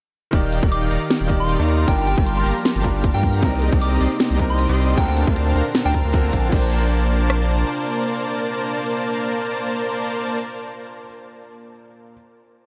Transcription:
0.31 D#1 D#3 D#4 G4 D5 F5 G5, kick, closed hi-hat
0.35 D5
0.52 closed hi-hat
0.63 D#1 D#3 D#4 D5 F5 G5, kick
0.72 D6, closed hi-hat
0.91 D#1 D#3 D#4 D5 F5 A#5, closed hi-hat
1.10 snare, closed hi-hat
1.21 D#1 D#3 D#4 D5 F5 G5
1.28 D#3 D#4 G4 D5, kick, closed hi-hat
1.40 C6
1.49 closed hi-hat
1.59 D#2 D#3 D#4 D5 F5 A#5
1.69 closed hi-hat
1.86 G1 F3 G3 A#3 D4 F4 G4 A#4 F5 G5 A5, kick, closed hi-hat
1.90 A#4
1.98 G5
2.07 G5, closed hi-hat
2.18 G1 G3 G4 A#4 F5 A5, kick
2.26 C6, closed hi-hat
2.37 C6
2.46 G1 G3 G4 A#4 F5 A#5, closed hi-hat
2.65 snare, closed hi-hat
2.76 G1 G3 G4 A#4 F5 A5
2.82 G3 D4 F4, kick, closed hi-hat
2.86 A#4
3.04 kick, closed hi-hat
3.14 G2 G3 G4 A#4 F5 G5 A#5
3.23 kick, closed hi-hat
3.41 C2 C3 C4 D#4 G4 A#4 D5 D#5 A#5, kick, closed hi-hat
3.62 closed hi-hat
3.72 C2 C4 G4 D5 D#5 A#5, kick
3.81 D6, closed hi-hat
4.01 C2 C4 G4 D5 D#5 C6, closed hi-hat
4.20 snare, closed hi-hat
4.30 C2 C4 G4 D5 D#5 A#5
4.37 C3 C4 D#4, kick, closed hi-hat
4.41 A#4
4.50 C6
4.59 closed hi-hat
4.69 C2 C4 G4 D5 D#5 C6
4.78 closed hi-hat
4.95 D2 A#2 D3 C4 D4 A4 A#4 C5 F5 G5 A5, kick, closed hi-hat
4.99 A#4
5.08 G5
5.17 closed hi-hat
5.27 D2 D4 A#4 C5 F5 A5, kick
5.36 closed hi-hat
5.55 D2 D4 A#4 C5 F5 A#5, closed hi-hat
5.75 snare, closed hi-hat
5.85 D2 D4 A#4 C5 F5 G5 A5
5.94 A#5, kick, closed hi-hat
6.05 D2 D4 A#4 C5 F5 C6
6.13 D3 A#3 C4 A#4, kick, closed hi-hat
6.24 D2 D4 A#4 C5 F5 A#5
6.33 A#1 D4 A#4 C5 F5 A5, kick, closed hi-hat
6.49 A#1 A#2 C3 A#3 D4 A#4 C5 D5 A5, kick, crash
6.53 D4 C5
7.30 cross-stick

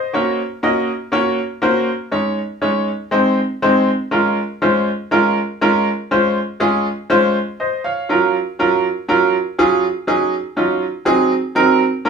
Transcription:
Already playing: C5 D#5
0.13 A#3 C#4 F#4 C#5
0.63 A#3 C#4 F#4 D#5
1.12 A#3 C#4 F#4 C#5
1.62 A#3 C#4 F#4 C5
2.12 G#3 C#4 D#4 C#5
2.62 G#3 C#4 D#4 C#5
3.11 G#3 C4 D#4 C5
3.62 G#3 C4 D#4 C5
4.11 G#3 C#4 F4 A#4
4.62 G#3 C#4 F4 C5
5.11 G#3 C#4 F4 A#4
5.61 G#3 C#4 F4 A#4
6.11 G#3 C#4 F4 C5
6.60 G#3 C#4 F4 G#4
7.10 G#3 C#4 F4 C5
7.60 C5 D#5
7.84 C#5 F5
8.09 F#3 C#4 F4 A#4
8.59 F#3 C#4 F4 A#4
9.08 F#3 C#4 F4 A#4
9.58 F#3 C#4 F4 G#4
10.07 F#3 C#4 D#4 G#4
10.57 F#3 C#4 D#4 F4
11.05 F#3 C4 D#4 G#4
11.55 F#3 C4 D#4 A#4
12.05 F#3 A#3 C#4 F4 A#4

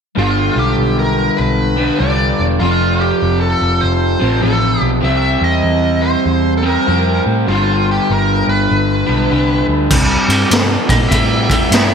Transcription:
0.15 G1 G2 D3 G3 F4
0.56 B1 G4
0.78 B1
0.99 A#4
1.37 B1 B4
1.77 G2 D3 G3
1.99 C2 G2 D3 G3 D5
2.39 E1
2.59 F1 F2 C3 F3 F4
3.00 G4
3.22 F1
3.41 A4
3.61 F1
3.81 F1 C5
4.20 A1 F2 C3 F3
4.41 A1 F2 C3 F3 A4
4.82 B1
5.01 C2 C3 G3 C4 E5
5.41 E2 D#5
5.64 E2
6.02 C5
6.26 E2
6.57 A4
6.62 C3 G3 C4 A#4
6.87 F2 C3 G3 C4
7.26 A2
7.47 G1 G2 D3 G3 F4
7.91 G4
8.10 G1 A#4
8.47 G1 B4
8.71 G1
9.06 B1 G2 D3 G3
9.30 C2 G2 D3 G3
9.68 D2
9.91 C2 C3 G3, kick, crash
10.28 G2 C3 G3, ride
10.51 G2 C3 A3, snare, ride
10.88 A#2 C3 G3 D#4 D#5, kick, ride
11.08 A2 C3 G3 E4 E5, kick, ride
11.50 C3 G3, kick, ride
11.71 G2 C3 A3, snare, ride

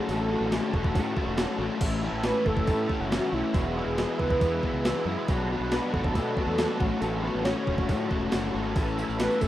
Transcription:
0.09 A1 A2 F#3 A3 C#4 F#4 A4, open hi-hat
0.29 A2 F#3 A3 C#4 F#4 A4
0.41 A1
0.51 A2 F#3 A3 C#4 F#4 G#4 A4, snare, open hi-hat
0.72 E1 A2 F#3 A3 C#4 F#4 A4, kick
0.84 kick
0.95 A2 F#3 A3 C#4 F#4 A4, kick, open hi-hat
1.17 A2 F#3 A3 C#4 F#4 A4, kick
1.27 E1
1.38 A2 F#3 A3 C#4 F#4 A4, snare, open hi-hat
1.59 A1 A2 F#3 A3 C#4 F#4 A4
1.81 A1 A2 E3 A3 C#4 E4, kick, open hi-hat, crash
2.02 A2 E3 A3 C#4 E4
2.12 A1
2.23 A2 E3 A3 C#4 E4 B4, snare, open hi-hat
2.44 F#1 A2 E3 A3 C#4 E4 A4, kick
2.57 kick
2.66 A2 E3 A3 C#4 E4 A4, kick, open hi-hat
2.88 A2 E3 A3 C#4 E4, kick
3.00 F#1 F#4
3.11 A2 E3 A3 C#4 E4, snare, open hi-hat
3.32 B1 A2 E3 A3 C#4 E4
3.54 E1 E2 B2 E3 G#3 B3 E4 F#4, kick, open hi-hat
3.75 E2 B2 E3 G#3 B3 E4
3.85 E1 G#4
3.95 E2 B2 E3 G#3 B3 E4, snare, open hi-hat
4.18 C#2 E2 B2 E3 G#3 B3 E4 B4, kick
4.30 kick
4.40 E2 B2 E3 G#3 B3 E4, kick, open hi-hat
4.62 E2 B2 E3 G#3 B3 E4, kick
4.73 C#2
4.84 E2 B2 E3 G#3 B3 E4, snare, open hi-hat
5.05 E2 F#2 B2 E3 G#3 B3 E4
5.28 B1 B2 F#3 B3 D4 F#4, kick, open hi-hat
5.51 B2 F#3 B3 D4 F#4
5.60 B1
5.72 B2 F#3 B3 D4 F#4 B4, snare, open hi-hat
5.93 G#1 B2 F#3 B3 D4 F#4 A4, kick
6.04 kick
6.15 B2 F#3 B3 D4 F#4, kick, open hi-hat
6.35 B2 F#3 B3 D4 F#4, kick
6.47 E2 A4
6.56 B2 F#3 B3 D4 F#4, snare, open hi-hat
6.62 D4
6.77 A1 A2 F#3 A3 C#4 F#4, kick
6.83 A4
7.00 A1 A2 F#3 A3 C#4 F#4 A4, open hi-hat
7.21 A2 F#3 A3 C#4 F#4 A4 B4
7.35 A1
7.44 A2 F#3 A3 C#4 F#4 C#5, snare, open hi-hat
7.48 A4
7.64 E1 A2 F#3 A3 C#4 F#4, kick
7.69 A4
7.78 kick
7.87 A2 F#3 A3 C#4 F#4, kick, open hi-hat
7.91 A4
8.09 E1 A2 F#3 A3 C#4 F#4 A4, kick
8.31 F#1 A2 F#3 A3 C#4 F#4 A4, snare, open hi-hat
8.54 G#1 A2 F#3 A3 C#4 F#4 A4
8.74 A1 A2 E3 A3 C#4 E4 A4, kick, open hi-hat, tambourine
8.88 tambourine
8.97 A2 E3 A3 C#4 E4 A4, tambourine
9.09 A1, tambourine
9.19 A2 E3 A3 C#4 E4 A4 B4, snare, open hi-hat, tambourine
9.31 tambourine
9.40 F#1 A2 E3 A3 C#4 E4 A4, kick, tambourine

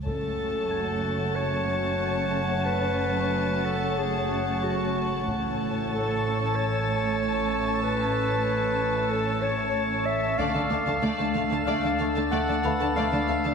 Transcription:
0.04 F#1 F#2 A3 C#4 F#4 A4 C#5 F#5 A5, taiko
0.70 A4 G#6
1.35 C#5
2.66 B4
3.65 A4
3.98 G#4
4.62 F#4 C#6
5.25 A1 A2 A3 C#4 A4 C#5 A5, taiko
5.92 A4
6.55 C#5
7.83 B4
9.10 A4
9.41 C#5
10.06 E5
10.37 D2 D3 A3 D4 A4 D5 F5 A5, taiko
10.54 D3 A3 D4 A5
10.69 D2 D3 A3 D5 F5 D6
10.87 D3 A3 D4 A5
11.02 D2 D3 A3 D5
11.19 D3 A3 D4 A5
11.34 D2 D3 A3 F5, taiko
11.50 D3 A3 D4 A5
11.65 D2 D3 A3 D5 F5
11.83 D3 A3 D4 A5
11.99 D2 D3 A3 F5
12.16 D3 A3 D4 A5
12.31 D2 D3 A3 D5 F#5
12.48 D3 A3 D4 A5
12.64 D2 D3 A3 B4 F5 B5
12.80 D3 A3 D4 A5
12.96 D2 D3 A3 D5 F5
13.12 D3 A3 D4 A5
13.28 D2 D3 A3 F5
13.44 D3 A3 D4 A5

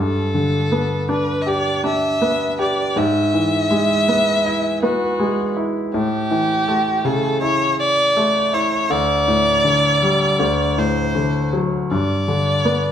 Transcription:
Already playing: G2 A4
0.34 D3
0.72 B3
1.09 D4 B4
1.42 E5
1.47 G4 D5
1.84 D4 E5
2.22 B3
2.59 G4 D5
2.96 G#2 E5
3.34 E3
3.71 G#3
4.08 B3
4.46 E4
4.83 B3 F#4
5.20 G#3
5.57 E4
5.94 A2 G4
6.31 E3
6.68 A3
7.05 C#3 A4
7.42 E4 C#5
7.80 D5
8.16 A3
8.53 E4 C#5
8.90 D2 D5
9.28 A2
9.64 D3
10.02 G3
10.39 D2
10.77 A2 C5
11.15 D3
11.53 F#3
11.91 G2 D5
12.28 D3
12.65 B3

